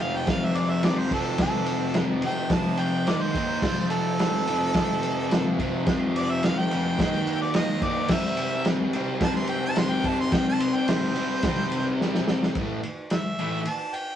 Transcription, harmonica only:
0.01 F5
0.16 G5
0.30 F5
0.44 E5
0.56 D5
0.70 E5
0.85 D5
0.99 C5
1.13 A4
1.41 A4
2.25 G5
2.53 A5
2.80 G5
3.08 D5
3.21 C5
3.90 A4
6.17 D5
6.31 E5
6.45 F5
6.58 G5
7.42 D5
7.55 D#5
7.83 D5
8.11 E5
9.24 A5
9.36 C6
9.49 G5
9.66 A5
9.78 C6
9.92 G5
10.07 A5
10.21 C6
10.33 G5
10.49 A5
10.61 C6
10.76 G5
10.88 C5
13.13 E5
13.69 A5
13.95 G5

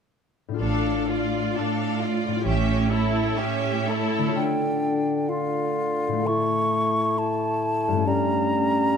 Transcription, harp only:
0.48 A2 D4
0.54 F4 A4
2.27 A2
2.32 C#4
2.36 E4
2.41 G4
4.18 D3
4.23 A3
4.27 F4
4.32 A4
6.08 A2
6.13 A3
6.17 E4
6.22 A4
7.88 G2
7.92 A3
7.97 C#4
8.01 A4

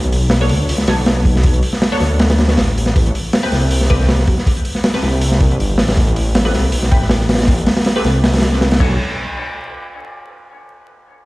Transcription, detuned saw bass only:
Already playing: B1
0.50 D2
0.69 C#2
0.88 B1
2.01 D2
2.58 A1
2.96 A1
3.52 C2
4.28 B1
5.03 C2
5.59 G1
5.78 A1
6.54 C2
6.73 B1
6.92 A1
8.05 C2
8.80 B1

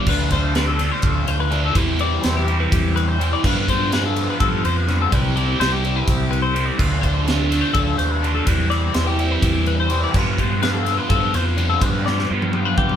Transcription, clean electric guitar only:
0.09 B4
0.32 C5
0.56 B4
0.68 A4
0.92 C5
1.03 A4
1.28 C5
1.40 B4
1.65 A4
1.76 B4
2.01 D5
2.24 C5
2.37 G4
2.60 B4
2.73 G4
2.96 B4
3.08 C5
3.33 D5
3.45 B4
3.69 C5
3.93 B4
4.06 A4
4.30 B4
4.40 A4
4.65 C5
4.77 B4
5.02 A4
5.13 B4
5.36 D5
5.60 C5
5.72 G4
5.96 B4
6.07 G4
6.31 B4
6.42 C5
6.66 D5
6.78 B4
7.02 C5
7.26 B4
7.37 A4
7.61 C5
7.74 A4
7.98 C5
8.11 B4
8.35 A4
8.47 B4
8.70 D5
8.94 C5
9.07 G4
9.31 B4
9.43 G4
9.67 B4
9.80 C5
10.04 D5
10.15 B4
10.39 C5
10.63 B4
10.74 A4
10.98 B4
11.09 A4
11.35 C5
11.45 B4
11.70 A4
11.82 B4
12.06 D5
12.30 B4
12.42 G4
12.65 B4
12.78 G4

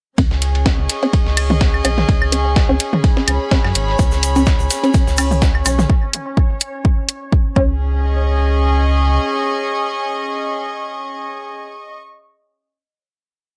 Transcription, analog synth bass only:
0.18 C#2
0.31 C#2
0.79 C#2
1.26 C#2
1.85 B1
2.09 C#2
2.22 C#2
2.69 C#2
3.28 C#2
3.65 F#2
3.75 G#1
3.99 C#2
4.12 C#2
4.60 C#2
5.07 C#2
5.66 B1
7.56 C#2

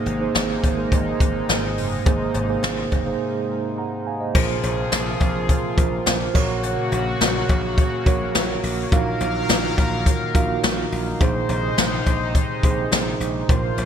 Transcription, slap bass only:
0.06 G#1
0.35 G#1
0.64 G#1
0.92 G#1
1.20 G#1
1.49 G#1
1.78 F#1
2.06 G#1
2.35 G#1
2.64 G#1
2.92 F#1
4.35 A#1
4.63 A#1
4.92 A#1
5.21 A#1
5.78 A#1
6.06 A#1
6.35 A#1
6.92 A#1
7.21 A#1
7.49 A#1
8.06 A#1
8.35 A#1
8.63 A#1
8.92 A#1
9.21 A#1
9.49 A#1
9.78 A#1
10.35 A#1
10.64 A#1
10.92 A#1
11.21 A#1
11.49 A#1
11.78 A#1
12.07 A#1
12.64 A#1
12.92 A#1
13.20 A#1
13.49 A#1
13.78 A#1

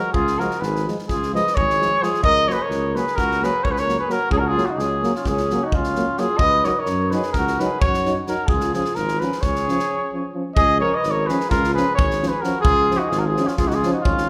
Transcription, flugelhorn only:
Already playing: F#4
0.14 F4
0.39 F#4
0.62 G#4
1.09 F4
1.34 B4
1.56 G#4
2.03 F4
2.25 A#4
2.50 A#4
2.55 G#4
2.63 A#4
2.97 G#4
3.18 F#4
3.43 G#4
3.65 A#4
3.71 G#4
3.81 A#4
4.01 G#4
4.10 F#4
4.33 C#4
4.39 F#4
4.50 F4
4.70 D#4
4.81 C#4
5.16 C#4
5.28 C#4
5.64 D#4
5.75 C#4
6.20 F4
6.42 B4
6.67 A#4
6.72 B4
6.80 A#4
7.14 G#4
7.38 F#4
7.64 G#4
7.85 F#4
8.30 F#4
8.51 F4
8.76 F4
8.98 F4
9.25 G#4
9.44 G#4
10.57 G#4
10.81 A#4
10.97 B4
11.11 A#4
11.28 G#4
11.49 F4
11.74 G#4
11.96 G#4
12.32 G#4
12.43 F#4
12.63 F4
13.00 D#4
13.10 F4
13.19 F#4
13.24 F4
13.45 C#4
13.57 F4
13.68 D#4
13.74 F4
13.93 D#4
14.03 C#4

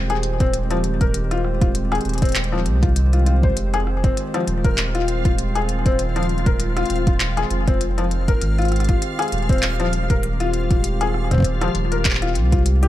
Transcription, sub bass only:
Already playing: D#1
2.05 D#1
2.66 C2
3.57 F1
4.48 D#1
6.90 D#1
7.51 F1
8.41 G#1
9.32 D#1
11.75 D#1
12.35 C2

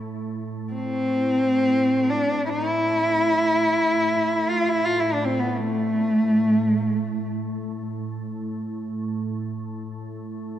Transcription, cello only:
0.73 C4
2.10 D4
2.49 D#4
2.67 E4
4.50 F4
4.69 E4
4.85 F4
5.00 E4
5.13 D4
5.25 C4
5.40 B3
5.58 A3

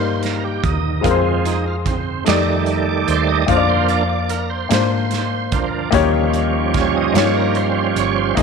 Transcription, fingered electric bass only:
Already playing: G2
0.64 D#2
1.05 F2
2.27 F2
3.08 D#2
3.48 F2
4.70 G#2
5.52 D2
5.92 D#2
7.14 G2
7.96 G1
8.37 G#1

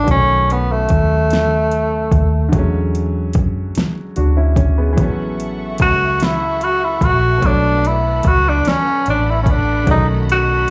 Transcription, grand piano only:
0.04 D#3 F#3
0.10 A3 C#4
2.49 D3 F#3
2.55 G#3 C#4
4.16 D4 F#4
4.37 C#4 E4
4.57 C#4
4.78 G#3 B3
4.93 E3 F#3
4.99 B3 C#4
7.38 B2 F#3
7.44 A3 C#5
9.83 C#3 F#3
9.90 D#3 A3 C#4

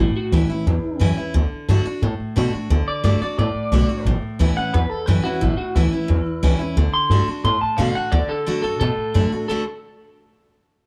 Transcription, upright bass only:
0.00 A1
0.15 muted upright bass stroke
0.32 D2
0.50 muted upright bass stroke
0.66 E2
0.84 muted upright bass stroke
1.00 F#2
1.17 muted upright bass stroke
1.34 D2
1.52 muted upright bass stroke
1.69 G2
1.86 muted upright bass stroke
2.02 A2
2.20 muted upright bass stroke
2.37 B2
2.54 muted upright bass stroke
2.70 D2
2.87 muted upright bass stroke
3.04 G2
3.21 muted upright bass stroke
3.38 A2
3.55 muted upright bass stroke
3.72 B1
3.89 muted upright bass stroke
4.05 A1
4.23 muted upright bass stroke
4.40 D2
4.74 E2
4.91 muted upright bass stroke
5.08 F#2
5.25 muted upright bass stroke
5.42 A1
5.59 muted upright bass stroke
5.76 D2
6.09 E2
6.26 muted upright bass stroke
6.43 C#2
6.77 D2
6.94 muted upright bass stroke
7.10 G2
7.27 muted upright bass stroke
7.44 A2
7.62 muted upright bass stroke
7.79 B2
7.96 muted upright bass stroke
8.12 D2
8.30 muted upright bass stroke
8.47 F#2
8.64 G2
8.81 B2
8.97 muted upright bass stroke
9.15 F#2
9.32 muted upright bass stroke
9.49 D2

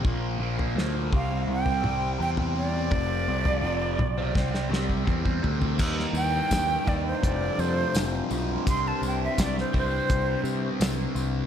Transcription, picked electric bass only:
0.05 A#1
0.39 A#1
0.75 D2
1.13 C2
1.47 C2
2.20 E2
2.91 F1
3.28 C2
3.62 F1
3.98 B1
4.36 C2
4.71 C2
5.07 E2
5.43 D2
5.80 D#2
6.13 D#2
6.51 D#2
6.87 D#2
7.23 F1
7.58 F2
7.95 F1
8.31 B1
8.67 C2
9.02 C2
9.38 C2
9.74 C2
10.10 C2
10.44 C3
10.80 C2
11.15 C2

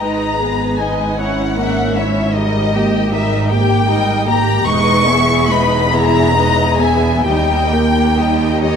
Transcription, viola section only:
0.00 G#3 D#4
0.40 B3
0.78 G#3 D#4
1.19 C#4 E4
1.57 A#3 C#4
1.97 C#4 E4
2.35 G3 D#4
2.74 A#3 G4
3.12 G3 D#4
3.51 A#3 G4
3.88 G3 D#4
4.27 A#3 G4
4.67 G#3 D#4
5.08 B3 E4
5.50 G#3 D#4
5.93 B3 E4
6.37 G#3 D#4
6.81 B3 E4
7.28 G3 D#4
7.72 A#3 G4
8.19 G3 D#4
8.65 A#3 G4

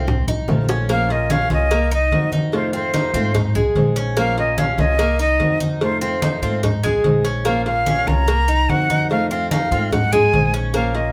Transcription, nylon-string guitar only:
0.07 muted nylon-string guitar stroke
0.48 D#3 A3 C4 F4
0.89 F3 A#3 C#4 F4
1.09 A#3 C#4 F4
1.51 A#3 C#4 F4
1.71 muted nylon-string guitar stroke
2.12 D#3 A#3 C4 F#4
2.52 C3 D#3 A3 C4 F4
2.73 D#3 A3 C4 F4
3.14 D#3 A3 C4 F4
3.35 muted nylon-string guitar stroke
3.76 G#3 C4 D#4 G#4
4.17 F3 A#3 C#4 F4
4.38 A#3 C#4 F4
4.78 A#3 C#4 F4
4.99 muted nylon-string guitar stroke
5.40 D#3 A#3 C4 F#4
5.81 C3 D#3 A3 C4 F4
6.02 D#3 A3 C4 F4
6.43 D#3 A3 C4 F4
6.63 muted nylon-string guitar stroke
7.04 G#3 C4 D#4 G#4
7.45 F3 A#3 C#4 F4
7.66 A#3 C#4 F4
8.07 A#3 C#4 F4
8.28 muted nylon-string guitar stroke
8.69 D#3 A#3 C4 F#4
9.10 C3 D#3 A3 C4 F4
9.30 D#3 A3 C4 F4
9.71 D#3 A3 C4 F4
9.92 muted nylon-string guitar stroke
10.33 G#3 C4 D#4 G#4
10.74 F3 A#3 C#4 F4
10.95 A#3 C#4 F4

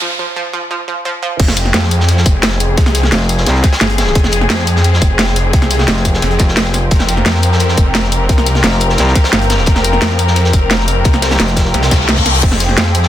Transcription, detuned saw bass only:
1.40 F1
1.74 F2
2.26 F1
2.78 C2
3.81 G1
4.15 F1
4.50 F2
5.02 F1
5.53 C2
6.22 F1
6.91 F1
7.26 F2
7.78 F1
8.29 C2
9.33 G1
9.67 F1
10.02 F2
10.53 F1
11.05 C2
11.74 C2
12.43 F1
12.78 F2

